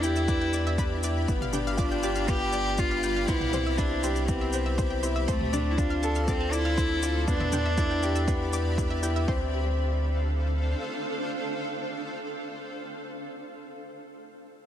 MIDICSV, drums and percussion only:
0, 0, Header, 1, 2, 480
1, 0, Start_track
1, 0, Tempo, 500000
1, 1233, Time_signature, 4, 2, 24, 8
1, 14074, End_track
2, 0, Start_track
2, 0, Title_t, "Drums"
2, 31, Note_on_c, 9, 82, 61
2, 127, Note_off_c, 9, 82, 0
2, 151, Note_on_c, 9, 82, 30
2, 247, Note_off_c, 9, 82, 0
2, 269, Note_on_c, 9, 82, 40
2, 271, Note_on_c, 9, 36, 111
2, 365, Note_off_c, 9, 82, 0
2, 367, Note_off_c, 9, 36, 0
2, 509, Note_on_c, 9, 82, 70
2, 605, Note_off_c, 9, 82, 0
2, 751, Note_on_c, 9, 36, 108
2, 751, Note_on_c, 9, 82, 47
2, 847, Note_off_c, 9, 36, 0
2, 847, Note_off_c, 9, 82, 0
2, 990, Note_on_c, 9, 82, 72
2, 1086, Note_off_c, 9, 82, 0
2, 1230, Note_on_c, 9, 82, 38
2, 1232, Note_on_c, 9, 36, 105
2, 1326, Note_off_c, 9, 82, 0
2, 1328, Note_off_c, 9, 36, 0
2, 1351, Note_on_c, 9, 45, 62
2, 1447, Note_off_c, 9, 45, 0
2, 1469, Note_on_c, 9, 45, 59
2, 1469, Note_on_c, 9, 82, 62
2, 1565, Note_off_c, 9, 45, 0
2, 1565, Note_off_c, 9, 82, 0
2, 1707, Note_on_c, 9, 82, 45
2, 1712, Note_on_c, 9, 36, 110
2, 1803, Note_off_c, 9, 82, 0
2, 1808, Note_off_c, 9, 36, 0
2, 1949, Note_on_c, 9, 82, 58
2, 2045, Note_off_c, 9, 82, 0
2, 2068, Note_on_c, 9, 82, 27
2, 2164, Note_off_c, 9, 82, 0
2, 2188, Note_on_c, 9, 82, 39
2, 2192, Note_on_c, 9, 36, 109
2, 2284, Note_off_c, 9, 82, 0
2, 2288, Note_off_c, 9, 36, 0
2, 2424, Note_on_c, 9, 82, 64
2, 2520, Note_off_c, 9, 82, 0
2, 2665, Note_on_c, 9, 82, 45
2, 2672, Note_on_c, 9, 36, 106
2, 2761, Note_off_c, 9, 82, 0
2, 2768, Note_off_c, 9, 36, 0
2, 2909, Note_on_c, 9, 82, 70
2, 3005, Note_off_c, 9, 82, 0
2, 3148, Note_on_c, 9, 82, 40
2, 3152, Note_on_c, 9, 36, 102
2, 3244, Note_off_c, 9, 82, 0
2, 3248, Note_off_c, 9, 36, 0
2, 3264, Note_on_c, 9, 45, 64
2, 3360, Note_off_c, 9, 45, 0
2, 3389, Note_on_c, 9, 45, 61
2, 3389, Note_on_c, 9, 82, 63
2, 3485, Note_off_c, 9, 45, 0
2, 3485, Note_off_c, 9, 82, 0
2, 3629, Note_on_c, 9, 82, 40
2, 3632, Note_on_c, 9, 36, 102
2, 3725, Note_off_c, 9, 82, 0
2, 3728, Note_off_c, 9, 36, 0
2, 3873, Note_on_c, 9, 82, 62
2, 3969, Note_off_c, 9, 82, 0
2, 3992, Note_on_c, 9, 82, 29
2, 4088, Note_off_c, 9, 82, 0
2, 4110, Note_on_c, 9, 82, 40
2, 4113, Note_on_c, 9, 36, 100
2, 4206, Note_off_c, 9, 82, 0
2, 4209, Note_off_c, 9, 36, 0
2, 4345, Note_on_c, 9, 82, 59
2, 4441, Note_off_c, 9, 82, 0
2, 4592, Note_on_c, 9, 36, 100
2, 4592, Note_on_c, 9, 82, 41
2, 4688, Note_off_c, 9, 36, 0
2, 4688, Note_off_c, 9, 82, 0
2, 4831, Note_on_c, 9, 82, 66
2, 4927, Note_off_c, 9, 82, 0
2, 5071, Note_on_c, 9, 82, 39
2, 5072, Note_on_c, 9, 36, 100
2, 5167, Note_off_c, 9, 82, 0
2, 5168, Note_off_c, 9, 36, 0
2, 5194, Note_on_c, 9, 45, 64
2, 5290, Note_off_c, 9, 45, 0
2, 5312, Note_on_c, 9, 45, 59
2, 5312, Note_on_c, 9, 82, 59
2, 5408, Note_off_c, 9, 45, 0
2, 5408, Note_off_c, 9, 82, 0
2, 5549, Note_on_c, 9, 36, 113
2, 5551, Note_on_c, 9, 82, 42
2, 5645, Note_off_c, 9, 36, 0
2, 5647, Note_off_c, 9, 82, 0
2, 5788, Note_on_c, 9, 82, 58
2, 5884, Note_off_c, 9, 82, 0
2, 5905, Note_on_c, 9, 82, 27
2, 6001, Note_off_c, 9, 82, 0
2, 6026, Note_on_c, 9, 82, 39
2, 6027, Note_on_c, 9, 36, 104
2, 6122, Note_off_c, 9, 82, 0
2, 6123, Note_off_c, 9, 36, 0
2, 6267, Note_on_c, 9, 82, 58
2, 6363, Note_off_c, 9, 82, 0
2, 6507, Note_on_c, 9, 36, 101
2, 6511, Note_on_c, 9, 82, 41
2, 6603, Note_off_c, 9, 36, 0
2, 6607, Note_off_c, 9, 82, 0
2, 6745, Note_on_c, 9, 82, 67
2, 6841, Note_off_c, 9, 82, 0
2, 6986, Note_on_c, 9, 36, 100
2, 6986, Note_on_c, 9, 82, 38
2, 7082, Note_off_c, 9, 36, 0
2, 7082, Note_off_c, 9, 82, 0
2, 7102, Note_on_c, 9, 45, 69
2, 7198, Note_off_c, 9, 45, 0
2, 7222, Note_on_c, 9, 45, 68
2, 7222, Note_on_c, 9, 82, 63
2, 7318, Note_off_c, 9, 45, 0
2, 7318, Note_off_c, 9, 82, 0
2, 7465, Note_on_c, 9, 36, 113
2, 7465, Note_on_c, 9, 82, 41
2, 7561, Note_off_c, 9, 36, 0
2, 7561, Note_off_c, 9, 82, 0
2, 7706, Note_on_c, 9, 82, 57
2, 7802, Note_off_c, 9, 82, 0
2, 7829, Note_on_c, 9, 82, 30
2, 7925, Note_off_c, 9, 82, 0
2, 7946, Note_on_c, 9, 36, 107
2, 7947, Note_on_c, 9, 82, 40
2, 8042, Note_off_c, 9, 36, 0
2, 8043, Note_off_c, 9, 82, 0
2, 8188, Note_on_c, 9, 82, 63
2, 8284, Note_off_c, 9, 82, 0
2, 8428, Note_on_c, 9, 36, 101
2, 8431, Note_on_c, 9, 82, 41
2, 8524, Note_off_c, 9, 36, 0
2, 8527, Note_off_c, 9, 82, 0
2, 8669, Note_on_c, 9, 82, 67
2, 8765, Note_off_c, 9, 82, 0
2, 8909, Note_on_c, 9, 36, 115
2, 9005, Note_off_c, 9, 36, 0
2, 14074, End_track
0, 0, End_of_file